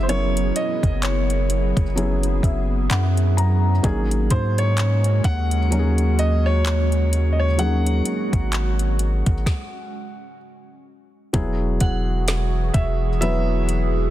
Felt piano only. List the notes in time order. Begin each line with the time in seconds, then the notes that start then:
Already playing: F#3 B3 C#4 E4 G#4
0.08 F#3 B3 C#4 E4 A#4
1.96 F#3 B3 C#4 E4 G#4
2.43 E5
2.90 F#5
3.37 A#5
3.83 F#3 A#3 C#4 D#4 G#4
5.70 F#3 A#3 C#4 D#4 F#4
5.79 G#4
7.58 F#3 A#3 C#4 D#4 G#4
11.33 F#3 B3 E4 F#4 G#4
13.21 F#3 B3 E4 F#4 B4